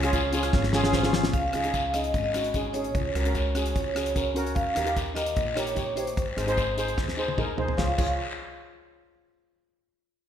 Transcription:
Already playing: upright bass C#2, vibraphone C#5
0.02 steel pan C#4 F4 G#4, cross-stick, closed hi-hat
0.13 kick, closed hi-hat, short guiro
0.32 steel pan C#4 F4 G#4 G#5, closed hi-hat, short guiro
0.43 cross-stick, closed hi-hat
0.53 upright bass G#1, steel pan F5, kick, snare, long guiro
0.63 snare
0.73 steel pan C#4 F4 G#4 C#5, snare, short guiro
0.83 steel pan C#4 F4 G#4, snare
0.93 steel pan C5, kick, snare, short guiro
1.03 steel pan C#4 F4 G#4, snare
1.13 snare
1.24 snare
1.33 upright bass C#2, vibraphone F5, kick, closed hi-hat, long guiro
1.41 vibraphone F5
1.48 vibraphone F5
1.53 upright bass C#2, steel pan C#4 D#4 G#4, vibraphone F5, cross-stick, closed hi-hat
1.63 steel pan C#4 D#4 G#4, vibraphone F5, closed hi-hat
1.71 vibraphone F5, kick, closed hi-hat, short guiro
1.79 vibraphone F5
1.94 steel pan C#4 D#4 G#4, vibraphone D#5, cross-stick, closed hi-hat, short guiro
2.01 vibraphone D#5, closed hi-hat
2.09 vibraphone D#5
2.14 upright bass G#1, vibraphone D#5, kick, closed hi-hat, long guiro
2.23 vibraphone D#5
2.31 steel pan C#4 D#4, vibraphone D#5, cross-stick, closed hi-hat, short guiro
2.35 steel pan F#4, vibraphone D#5
2.44 closed hi-hat
2.54 steel pan C#4 D#4 G#4, kick, closed hi-hat, short guiro
2.73 steel pan C#4 D#4 G#4, vibraphone C#5, closed hi-hat
2.81 vibraphone C#5, closed hi-hat
2.89 vibraphone C#5
2.94 upright bass C#2, vibraphone C#5, kick, closed hi-hat, long guiro
3.04 vibraphone C#5
3.12 upright bass C#2, steel pan C#4 F#4, vibraphone C#5, cross-stick, closed hi-hat
3.16 steel pan A#4, vibraphone C#5
3.25 steel pan C#4 F#4 A#4, vibraphone C#5, closed hi-hat
3.34 vibraphone C#5, kick, closed hi-hat, short guiro
3.43 vibraphone C#5
3.50 vibraphone C#5
3.55 steel pan C#4 F#4 G#4, vibraphone C#5, cross-stick, closed hi-hat, short guiro
3.64 vibraphone C#5, closed hi-hat
3.72 upright bass C#2, vibraphone C#5, kick, closed hi-hat
3.76 vibraphone C#5, long guiro
3.87 vibraphone C#5
3.94 steel pan C#4 F#4 G#4, vibraphone C#5, cross-stick, closed hi-hat, short guiro
4.02 vibraphone C#5
4.06 vibraphone C#5, closed hi-hat
4.15 steel pan C#4 F#4 A#4, vibraphone C#5, kick, closed hi-hat, short guiro
4.34 steel pan C#4 F#4 A#4, closed hi-hat
4.46 closed hi-hat
4.55 upright bass D#2, vibraphone F5, kick, closed hi-hat, long guiro
4.75 upright bass D#2, steel pan D#4 G4 A#4, cross-stick, closed hi-hat
4.84 steel pan D#4 G4 A#4, closed hi-hat
4.96 kick, closed hi-hat, short guiro
5.14 steel pan D#4 G4 A#4, vibraphone D#5, cross-stick, closed hi-hat, short guiro
5.26 closed hi-hat
5.36 upright bass A#1, kick, closed hi-hat, long guiro
5.55 steel pan D#4 G4 A#4, vibraphone C#5, cross-stick, closed hi-hat, short guiro
5.67 closed hi-hat
5.75 steel pan D#4 G4 C#5, kick, closed hi-hat, short guiro
5.96 steel pan D#4 G4 C#5, vibraphone C5, closed hi-hat
6.07 closed hi-hat
6.17 upright bass G#1, kick, closed hi-hat, long guiro
6.36 upright bass G#1, steel pan D#4 G#4 C5, cross-stick, closed hi-hat
6.47 steel pan D#4 G#4 C5, closed hi-hat
6.57 kick, closed hi-hat, short guiro
6.77 steel pan D#4 G#4 C5, closed hi-hat, short guiro
6.88 closed hi-hat
6.97 upright bass D#2, kick, snare, long guiro
7.08 snare
7.17 steel pan D#4 G#4 C5, short guiro
7.28 high tom
7.37 steel pan D#4 G#4 A#4, kick, mid tom, short guiro
7.57 steel pan D#4 G#4 C5, floor tom
7.68 floor tom
7.77 upright bass C#2, steel pan F4 G#4 C#5, vibraphone F5, kick, snare, long guiro
7.98 upright bass C#2, steel pan F4 G#4 C#5, kick, crash, long guiro

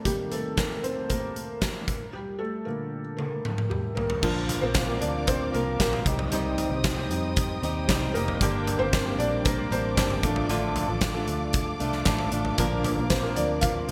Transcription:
0.05 felt piano C3 D#3 G3 A#3 G4, kick, closed hi-hat
0.31 felt piano A3 A4, closed hi-hat
0.57 felt piano A#3 A#4, kick, snare, closed hi-hat
0.83 felt piano C4 C5, closed hi-hat
1.09 felt piano A#3 A#4, kick, closed hi-hat
1.36 closed hi-hat
1.61 felt piano A#3 A#4, kick, snare, closed hi-hat
1.88 kick, closed hi-hat
2.13 felt piano G3 G4
2.39 felt piano A3 A4
2.65 felt piano A#2 D3 A#3 A#4
3.17 felt piano A#3 A#4, high tom
3.45 mid tom
3.58 mid tom
3.69 felt piano G3 G4, mid tom
3.95 felt piano A#3 A#4, floor tom
4.10 floor tom
4.21 fingered electric bass A#1, steel-string acoustic guitar A#2 D3 F3 A#3 F4 A#4, felt piano F3 A#3 D4, string section A#4 D5 F5 D6, kick, crash
4.49 closed hi-hat, floor tom
4.61 fingered electric bass A#1, steel-string acoustic guitar F3 A#3 F4 A#4, felt piano C4 C5
4.74 kick, snare, closed hi-hat
4.87 steel-string acoustic guitar F3 A#3 F4 A#4
5.01 fingered electric bass D2, felt piano D4 D5, closed hi-hat
5.27 felt piano C4 C5, kick, closed hi-hat
5.52 fingered electric bass C2, steel-string acoustic guitar F3 A#3 F4 A#4, felt piano A#3 A#4, closed hi-hat
5.79 fingered electric bass A#1, steel-string acoustic guitar F3 A#3 F4 A#4, kick, snare, closed hi-hat
5.93 floor tom
6.05 fingered electric bass C2, steel-string acoustic guitar G3 C4 D#4 G4, felt piano G3 C4 D#4, string section C5 D#5 G5 D#6, kick, closed hi-hat
6.19 floor tom
6.31 fingered electric bass C2, steel-string acoustic guitar C3 G3 C4 D#4 G4, closed hi-hat
6.58 closed hi-hat, floor tom
6.70 fingered electric bass C2, steel-string acoustic guitar C4 D#4 G4
6.84 kick, snare, closed hi-hat
6.97 steel-string acoustic guitar C4 D#4 G4
7.10 fingered electric bass F2, felt piano G3 C4 D#4, closed hi-hat
7.36 kick, closed hi-hat
7.62 fingered electric bass D#2, steel-string acoustic guitar G3 C4 D#4 G4, closed hi-hat
7.87 fingered electric bass C2, steel-string acoustic guitar G3 C4 D#4 G4, felt piano G3 G4, kick, snare, closed hi-hat
8.14 fingered electric bass F1, steel-string acoustic guitar G3 C4 D#4 G4, felt piano A#3 A#4, closed hi-hat
8.28 floor tom
8.41 fingered electric bass G1, steel-string acoustic guitar G2 D3 G3 A#3 D4 G4, string section A#4 D5 D6, kick, closed hi-hat
8.67 closed hi-hat, floor tom
8.79 fingered electric bass G1, steel-string acoustic guitar G3 A#3 D4 G4, felt piano C4 C5
8.93 kick, snare, closed hi-hat
9.06 steel-string acoustic guitar G3 A#3 D4 G4
9.18 fingered electric bass A#1, felt piano G3 A#3 D4 D5, closed hi-hat
9.45 felt piano A#3 A#4, kick, closed hi-hat
9.70 fingered electric bass A1, steel-string acoustic guitar G3 A#3 D4 G4, felt piano C4 C5, closed hi-hat
9.97 fingered electric bass G1, steel-string acoustic guitar G3 A#3 D4 G4, kick, snare, closed hi-hat
10.10 floor tom
10.23 fingered electric bass A1, felt piano F3 A3 D4, steel-string acoustic guitar A3 D4 F4 A4, string section A4 F5, kick, closed hi-hat
10.36 floor tom
10.49 fingered electric bass A1, steel-string acoustic guitar A2 D3 A3 D4 F4 A4, closed hi-hat
10.76 closed hi-hat, floor tom
10.88 fingered electric bass A1, steel-string acoustic guitar A3 D4 F4 A4
11.01 kick, snare, closed hi-hat
11.14 steel-string acoustic guitar A3 D4 F4 A4
11.27 fingered electric bass D2, closed hi-hat
11.53 kick, closed hi-hat
11.80 fingered electric bass C2, steel-string acoustic guitar A3 D4 F4 A4, closed hi-hat
11.93 snare
12.05 fingered electric bass A1, steel-string acoustic guitar A3 D4 F4 A4, kick, snare, closed hi-hat
12.19 floor tom
12.31 fingered electric bass A1, steel-string acoustic guitar A3 D4 F4 A4, closed hi-hat
12.45 floor tom
12.58 fingered electric bass A#1, steel-string acoustic guitar A#2 D3 F3 A#3 D4 A#4, felt piano F3 A#3 D4, string section A#4, kick, closed hi-hat
12.84 felt piano A#3 A#4, closed hi-hat, floor tom
12.97 fingered electric bass A#1, steel-string acoustic guitar F3 A#3 D4 A#4
13.10 felt piano C4 C5, kick, snare, closed hi-hat
13.23 steel-string acoustic guitar F3 A#3 D4 A#4
13.36 fingered electric bass D2, felt piano F3 A#3 D4 D5, closed hi-hat
13.61 felt piano F4 F5, kick, closed hi-hat
13.88 steel-string acoustic guitar F3

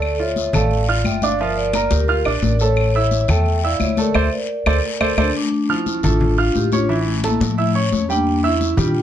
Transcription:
Already playing: upright bass D2, grand piano A3 A4 A5, vibraphone A4 D5
0.02 high conga, long guiro, claves
0.19 grand piano F4, vibraphone C#5 E5, high conga
0.36 high conga, short guiro
0.53 upright bass A1, grand piano A3 A4 A5, vibraphone D5 F5, high conga, low conga, short guiro, claves
0.71 high conga, long guiro
0.88 grand piano F4 F5 F6, high conga
1.04 upright bass G1, vibraphone E5 G5, high conga, short guiro, claves
1.22 grand piano D4 D5 D6, vibraphone D5 F5, high conga, short guiro
1.39 grand piano F3 F4 F5, vibraphone A#4 E5, high conga, long guiro
1.57 vibraphone A#4 D5, high conga
1.73 grand piano A#3 A#4 A#5, high conga, short guiro, claves
1.91 upright bass D2, vibraphone G4 A#4, high conga, short guiro
2.08 grand piano F4 F5 F6, high conga, long guiro
2.25 upright bass A#1, grand piano D4 D5 D6, high conga, claves
2.42 upright bass A1, vibraphone A#4 D5, high conga, short guiro
2.59 grand piano A3 A4 A5, vibraphone A4 C#5, high conga, short guiro
2.76 high conga, long guiro, claves
2.94 grand piano E4 E5 E6, vibraphone C#5 E5, high conga
3.11 high conga, short guiro
3.28 upright bass E2, grand piano A3 A4 A5, vibraphone G5, high conga, low conga, short guiro, claves
3.46 high conga, long guiro
3.63 grand piano E4 E5 E6, vibraphone D5 F5, high conga
3.80 upright bass D2, vibraphone C#5 E5, high conga, short guiro, claves
3.97 grand piano A3 A4 A5, vibraphone A#4 D5, high conga, short guiro
4.14 upright bass D2, grand piano A4 C5 D5, vibraphone C5 E5, high conga, long guiro, claves
4.32 vibraphone A#4 D5
4.66 upright bass D2, grand piano A4 C5 D5, high conga, long guiro, claves
5.00 upright bass D2, grand piano A4 C5 D5, high conga, long guiro, claves
5.17 upright bass D2, vibraphone A3 D4, grand piano A4 C5 D5, high conga, long guiro, claves
5.36 vibraphone A3 D4
5.52 high conga
5.69 grand piano F3 F6, vibraphone C#4 E4, high conga
5.86 high conga, short guiro
6.03 upright bass A1, grand piano A3 A4 A5, vibraphone D4 F4, high conga, low conga, short guiro
6.20 high conga, low conga, long guiro
6.38 grand piano F4 F5 F6, high conga
6.55 upright bass A1, vibraphone E4 G4, high conga, short guiro
6.72 grand piano C#4 C#5 C#6, vibraphone D4 F4, high conga, short guiro
6.89 grand piano E3 E4 E5, vibraphone C#4 E4, high conga, long guiro
7.07 vibraphone A3 C#4, high conga
7.24 grand piano A3 A4 A5, vibraphone A#3 E4, high conga, short guiro
7.40 upright bass A2, vibraphone F3 A3, high conga, short guiro
7.58 grand piano E4 E5 E6, high conga, long guiro
7.75 grand piano C#4 C#5 C#6, high conga
7.92 upright bass E2, vibraphone A3 C#4, high conga, short guiro
8.09 grand piano G3 G4 G5, vibraphone A#3 D4, high conga, short guiro
8.27 high conga, long guiro
8.43 vibraphone C#4 E4, grand piano E4 E5 E6, high conga
8.61 high conga, short guiro
8.77 upright bass A#2, grand piano G3 G4 G5, vibraphone D4 F4, high conga, low conga, short guiro
8.95 high conga, long guiro

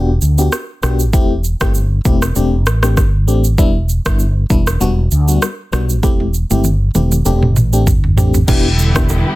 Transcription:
Already playing: fretless electric bass E1, fm electric piano B3 D4 F#4 G4
0.22 fretless electric bass D2, shaker
0.38 fm electric piano B3 D4 F#4 G4, shaker
0.52 cross-stick, shaker
0.82 fretless electric bass B1, fm electric piano B3 D4 F#4 G4, cross-stick, shaker
0.99 shaker
1.13 fretless electric bass E1, fm electric piano A3 C4 E4 G4, kick, shaker
1.44 shaker
1.61 fretless electric bass G1, fm electric piano A3 C4 E4 G4, kick, cross-stick, shaker
1.74 shaker
2.05 fretless electric bass E1, fm electric piano A3 C4 E4 G4, kick, shaker
2.22 cross-stick, shaker
2.35 fretless electric bass E1, fm electric piano A3 C4 D4 G4, shaker
2.66 fretless electric bass A1, cross-stick, shaker
2.83 fm electric piano A3 C4 D4 G4, cross-stick, shaker
2.97 fretless electric bass G1, kick, cross-stick, shaker
3.27 fretless electric bass A1, fm electric piano A3 C4 D4 G4, shaker
3.44 shaker
3.58 fretless electric bass E1, fm electric piano G3 B3 D4 E4, kick, shaker
3.89 shaker
4.05 fretless electric bass G1, fm electric piano G3 B3 D4 E4, kick, cross-stick, shaker
4.19 shaker
4.50 fretless electric bass E1, fm electric piano G3 B3 D4 E4, kick, shaker
4.67 cross-stick, shaker
4.80 fretless electric bass E1, fm electric piano G3 B3 D4 F#4, shaker
5.11 fretless electric bass D2, shaker
5.28 fm electric piano G3 B3 D4 F#4, shaker
5.42 cross-stick, shaker
5.72 fretless electric bass B1, fm electric piano G3 B3 D4 F#4, cross-stick, shaker
5.89 shaker
6.03 fretless electric bass E1, fm electric piano A3 C4 E4 G4, kick, high tom, shaker
6.20 high tom
6.34 shaker
6.50 fretless electric bass G1, fm electric piano A3 C4 E4 G4, high tom, shaker
6.64 mid tom, shaker
6.95 fretless electric bass E1, fm electric piano A3 C4 E4 G4, mid tom, shaker
7.12 mid tom, shaker
7.25 fretless electric bass E1, fm electric piano A3 C4 D4 G4, shaker
7.43 mid tom
7.56 fretless electric bass A1, mid tom, shaker
7.73 fm electric piano A3 C4 D4 G4, shaker
7.87 fretless electric bass G1, kick, floor tom, shaker
8.04 floor tom
8.17 fretless electric bass A1, fm electric piano A3 C4 D4 G4, floor tom, shaker
8.34 floor tom, shaker
8.48 fretless electric bass E1, string section D3 G3 B3 E4 G4, fm electric piano B3 D4 E4 G4, kick, crash, low conga, shaker
8.79 shaker
8.95 fm electric piano B3 D4 E4 G4, kick, cross-stick, shaker
9.09 high bongo, shaker

